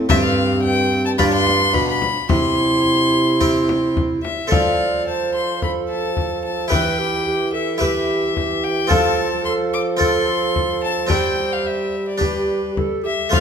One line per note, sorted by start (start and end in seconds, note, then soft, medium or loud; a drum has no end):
0.09 1.15 G2 medium
0.09 1.17 G2 medium
0.09 1.17 C4 medium
0.09 1.15 C4 medium
0.09 1.15 D4 medium
0.09 1.15 G4 medium
0.09 0.15 E5 loud
0.09 frame drum medium
0.23 0.62 F5 medium
0.63 1.04 G5 medium
1.06 1.11 A5 medium
1.18 1.70 G2 medium
1.18 1.76 G2 medium
1.18 2.00 D4 medium
1.18 2.26 D4 medium
1.18 2.26 F4 medium
1.18 2.26 G4 medium
1.18 1.24 B5 loud
1.18 frame drum medium
1.32 1.75 C6 loud
1.47 frame drum medium
1.74 2.10 B2 medium
1.74 2.07 B2 medium
1.74 1.88 B5 loud
1.74 frame drum soft
1.89 2.29 B5 medium
2.02 frame drum soft
2.29 4.20 C3 medium
2.29 4.20 E4 medium
2.29 3.93 C6 loud
2.29 frame drum medium
3.40 4.21 C4 soft
3.40 4.21 E4 medium
3.40 4.21 G4 medium
3.40 frame drum soft
3.69 frame drum medium
3.97 frame drum soft
4.23 4.52 E5 medium
4.23 frame drum soft
4.47 6.67 F3 soft
4.47 6.65 C4 soft
4.47 6.66 A4 soft
4.47 5.07 F5 medium
4.51 6.73 F3 medium
4.51 5.09 D5 medium
4.51 frame drum medium
5.07 5.64 C5 soft
5.07 5.35 A5 medium
5.35 5.62 C6 medium
5.62 6.70 A4 medium
5.62 5.71 B5 medium
5.62 frame drum soft
5.90 6.43 A5 medium
6.17 frame drum soft
6.45 6.70 A5 medium
6.68 8.87 E3 soft
6.68 8.90 E3 medium
6.68 7.76 E4 soft
6.68 7.77 G4 soft
6.68 7.77 B4 soft
6.68 7.00 B4 medium
6.68 7.52 G5 medium
6.68 frame drum medium
6.99 7.25 G4 medium
7.26 7.55 G4 medium
7.53 7.83 A4 medium
7.53 7.80 E5 medium
7.78 8.86 E4 soft
7.78 8.86 G4 soft
7.78 8.87 B4 soft
7.78 8.66 E5 medium
7.78 frame drum soft
7.82 8.36 G4 medium
8.37 8.90 G4 medium
8.37 frame drum soft
8.64 8.91 G5 medium
8.87 11.06 F3 medium
8.87 11.11 F3 medium
8.87 9.95 C4 soft
8.87 9.96 F4 soft
8.87 9.96 A4 soft
8.87 9.44 A5 medium
8.87 frame drum medium
8.91 9.42 A4 medium
9.45 9.99 A4 medium
9.45 9.53 C6 medium
9.74 9.82 D6 medium
9.97 11.05 C4 soft
9.97 11.06 F4 soft
9.97 11.06 A4 soft
9.97 11.12 A4 medium
9.97 10.81 C6 medium
10.01 frame drum soft
10.56 frame drum soft
10.84 11.10 A5 medium
11.07 13.05 G3 medium
11.07 13.01 G3 soft
11.07 12.16 C4 soft
11.07 12.17 D4 soft
11.07 12.17 G4 soft
11.07 11.95 C5 medium
11.07 frame drum medium
11.11 11.54 G5 medium
11.52 11.68 F5 medium
11.67 12.08 E5 medium
12.09 12.22 D5 medium
12.18 13.28 D4 soft
12.18 13.28 G4 soft
12.18 12.71 G4 medium
12.18 frame drum soft
12.23 12.77 B4 medium
12.77 13.05 A4 medium
12.77 frame drum soft
13.04 13.32 G4 soft
13.04 13.31 E5 medium
13.29 13.40 F3 medium
13.29 13.40 A3 soft
13.29 13.40 F4 soft
13.29 13.40 A4 medium
13.29 13.40 C5 soft
13.29 13.39 F5 medium
13.29 frame drum medium